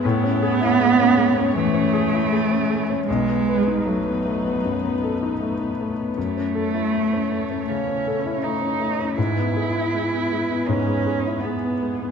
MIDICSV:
0, 0, Header, 1, 4, 480
1, 0, Start_track
1, 0, Tempo, 754717
1, 22, Time_signature, 4, 2, 24, 8
1, 1462, Tempo, 770218
1, 4342, Tempo, 749064
1, 7669, End_track
2, 0, Start_track
2, 0, Title_t, "String section"
2, 0, Program_c, 0, 48
2, 0, Note_on_c, 0, 64, 64
2, 0, Note_on_c, 0, 68, 63
2, 25, Note_on_c, 0, 73, 73
2, 1937, Note_on_c, 0, 63, 61
2, 1939, Note_off_c, 0, 64, 0
2, 1939, Note_off_c, 0, 68, 0
2, 1943, Note_off_c, 0, 73, 0
2, 1943, Note_on_c, 0, 59, 61
2, 1948, Note_on_c, 0, 71, 60
2, 3866, Note_off_c, 0, 63, 0
2, 3866, Note_on_c, 0, 73, 51
2, 3871, Note_off_c, 0, 71, 0
2, 3871, Note_on_c, 0, 52, 52
2, 5784, Note_off_c, 0, 73, 0
2, 5786, Note_off_c, 0, 59, 0
2, 5789, Note_on_c, 0, 68, 49
2, 5789, Note_on_c, 0, 71, 52
2, 7669, Note_off_c, 0, 52, 0
2, 7669, Note_off_c, 0, 68, 0
2, 7669, Note_off_c, 0, 71, 0
2, 7669, End_track
3, 0, Start_track
3, 0, Title_t, "Cello"
3, 0, Program_c, 1, 42
3, 17, Note_on_c, 1, 59, 127
3, 974, Note_on_c, 1, 57, 107
3, 984, Note_off_c, 1, 59, 0
3, 1932, Note_off_c, 1, 57, 0
3, 1935, Note_on_c, 1, 56, 106
3, 2431, Note_on_c, 1, 54, 74
3, 2441, Note_off_c, 1, 56, 0
3, 3631, Note_off_c, 1, 54, 0
3, 3861, Note_on_c, 1, 57, 100
3, 4835, Note_on_c, 1, 61, 85
3, 4845, Note_off_c, 1, 57, 0
3, 5310, Note_on_c, 1, 63, 83
3, 5320, Note_off_c, 1, 61, 0
3, 5766, Note_off_c, 1, 63, 0
3, 5769, Note_on_c, 1, 64, 100
3, 6749, Note_on_c, 1, 61, 93
3, 6759, Note_off_c, 1, 64, 0
3, 7215, Note_on_c, 1, 59, 74
3, 7224, Note_off_c, 1, 61, 0
3, 7669, Note_off_c, 1, 59, 0
3, 7669, End_track
4, 0, Start_track
4, 0, Title_t, "Grand piano"
4, 0, Program_c, 2, 0
4, 0, Control_c, 2, 64, 127
4, 33, Control_c, 2, 64, 0
4, 33, Note_on_c, 2, 45, 78
4, 149, Control_c, 2, 64, 127
4, 150, Note_on_c, 2, 61, 57
4, 271, Note_on_c, 2, 68, 61
4, 337, Note_off_c, 2, 61, 0
4, 389, Note_on_c, 2, 64, 64
4, 457, Note_off_c, 2, 68, 0
4, 511, Note_on_c, 2, 56, 57
4, 576, Note_off_c, 2, 64, 0
4, 630, Note_on_c, 2, 61, 59
4, 696, Note_off_c, 2, 56, 0
4, 746, Note_on_c, 2, 56, 60
4, 816, Note_off_c, 2, 61, 0
4, 869, Note_on_c, 2, 61, 64
4, 934, Note_off_c, 2, 56, 0
4, 959, Note_off_c, 2, 45, 0
4, 992, Note_on_c, 2, 52, 63
4, 1056, Note_off_c, 2, 61, 0
4, 1105, Note_on_c, 2, 61, 57
4, 1178, Note_off_c, 2, 52, 0
4, 1230, Note_on_c, 2, 68, 66
4, 1295, Note_off_c, 2, 61, 0
4, 1353, Note_on_c, 2, 64, 64
4, 1418, Note_off_c, 2, 68, 0
4, 1477, Note_on_c, 2, 68, 58
4, 1539, Note_off_c, 2, 64, 0
4, 1595, Note_on_c, 2, 61, 56
4, 1661, Note_off_c, 2, 68, 0
4, 1713, Note_on_c, 2, 68, 51
4, 1780, Note_off_c, 2, 61, 0
4, 1834, Note_on_c, 2, 61, 50
4, 1900, Note_off_c, 2, 68, 0
4, 1948, Note_off_c, 2, 61, 0
4, 1954, Control_c, 2, 64, 0
4, 1962, Note_on_c, 2, 35, 64
4, 2056, Control_c, 2, 64, 127
4, 2083, Note_on_c, 2, 59, 45
4, 2205, Note_on_c, 2, 71, 52
4, 2267, Note_off_c, 2, 59, 0
4, 2320, Note_on_c, 2, 63, 51
4, 2388, Note_off_c, 2, 71, 0
4, 2439, Note_on_c, 2, 57, 48
4, 2507, Note_off_c, 2, 63, 0
4, 2566, Note_on_c, 2, 59, 46
4, 2626, Note_off_c, 2, 57, 0
4, 2683, Note_on_c, 2, 57, 51
4, 2750, Note_off_c, 2, 59, 0
4, 2798, Note_on_c, 2, 59, 48
4, 2868, Note_off_c, 2, 57, 0
4, 2893, Note_off_c, 2, 35, 0
4, 2927, Note_on_c, 2, 42, 45
4, 2985, Note_off_c, 2, 59, 0
4, 3040, Note_on_c, 2, 59, 44
4, 3110, Note_off_c, 2, 42, 0
4, 3168, Note_on_c, 2, 69, 49
4, 3226, Note_off_c, 2, 59, 0
4, 3285, Note_on_c, 2, 63, 47
4, 3350, Note_off_c, 2, 69, 0
4, 3398, Note_on_c, 2, 57, 44
4, 3468, Note_off_c, 2, 63, 0
4, 3526, Note_on_c, 2, 59, 43
4, 3585, Note_off_c, 2, 57, 0
4, 3650, Note_on_c, 2, 57, 41
4, 3709, Note_off_c, 2, 59, 0
4, 3765, Note_on_c, 2, 59, 42
4, 3831, Note_off_c, 2, 57, 0
4, 3876, Note_off_c, 2, 59, 0
4, 3877, Note_on_c, 2, 42, 53
4, 3880, Control_c, 2, 64, 0
4, 3992, Control_c, 2, 64, 127
4, 4002, Note_on_c, 2, 61, 43
4, 4112, Note_on_c, 2, 69, 50
4, 4185, Note_off_c, 2, 61, 0
4, 4232, Note_on_c, 2, 64, 45
4, 4299, Note_off_c, 2, 69, 0
4, 4354, Note_on_c, 2, 57, 43
4, 4420, Note_off_c, 2, 64, 0
4, 4478, Note_on_c, 2, 61, 42
4, 4543, Note_off_c, 2, 57, 0
4, 4596, Note_on_c, 2, 57, 45
4, 4665, Note_off_c, 2, 61, 0
4, 4718, Note_on_c, 2, 61, 45
4, 4784, Note_off_c, 2, 57, 0
4, 4806, Note_off_c, 2, 42, 0
4, 4840, Note_on_c, 2, 49, 46
4, 4906, Note_off_c, 2, 61, 0
4, 4960, Note_on_c, 2, 61, 43
4, 5026, Note_off_c, 2, 49, 0
4, 5082, Note_on_c, 2, 69, 50
4, 5146, Note_off_c, 2, 61, 0
4, 5197, Note_on_c, 2, 64, 47
4, 5266, Note_off_c, 2, 69, 0
4, 5316, Note_on_c, 2, 57, 45
4, 5383, Note_off_c, 2, 64, 0
4, 5430, Note_on_c, 2, 61, 44
4, 5503, Note_off_c, 2, 57, 0
4, 5546, Note_on_c, 2, 57, 44
4, 5620, Note_off_c, 2, 61, 0
4, 5671, Note_on_c, 2, 61, 41
4, 5738, Note_off_c, 2, 57, 0
4, 5788, Note_off_c, 2, 61, 0
4, 5790, Note_on_c, 2, 44, 55
4, 5796, Control_c, 2, 64, 0
4, 5892, Control_c, 2, 64, 127
4, 5914, Note_on_c, 2, 59, 42
4, 6036, Note_on_c, 2, 68, 49
4, 6102, Note_off_c, 2, 59, 0
4, 6160, Note_on_c, 2, 64, 45
4, 6223, Note_off_c, 2, 68, 0
4, 6276, Note_on_c, 2, 56, 42
4, 6344, Note_off_c, 2, 64, 0
4, 6399, Note_on_c, 2, 59, 40
4, 6461, Note_off_c, 2, 56, 0
4, 6521, Note_on_c, 2, 56, 45
4, 6582, Note_off_c, 2, 59, 0
4, 6637, Note_on_c, 2, 59, 46
4, 6703, Note_off_c, 2, 56, 0
4, 6719, Note_off_c, 2, 44, 0
4, 6754, Note_on_c, 2, 44, 52
4, 6821, Note_off_c, 2, 59, 0
4, 6873, Note_on_c, 2, 56, 45
4, 6997, Note_on_c, 2, 68, 48
4, 7060, Note_off_c, 2, 56, 0
4, 7126, Note_on_c, 2, 64, 46
4, 7182, Note_off_c, 2, 68, 0
4, 7244, Note_on_c, 2, 56, 49
4, 7306, Note_off_c, 2, 64, 0
4, 7365, Note_on_c, 2, 59, 48
4, 7425, Note_off_c, 2, 56, 0
4, 7486, Note_on_c, 2, 56, 43
4, 7546, Note_off_c, 2, 59, 0
4, 7597, Note_on_c, 2, 59, 46
4, 7666, Note_off_c, 2, 56, 0
4, 7669, Note_off_c, 2, 44, 0
4, 7669, Note_off_c, 2, 59, 0
4, 7669, End_track
0, 0, End_of_file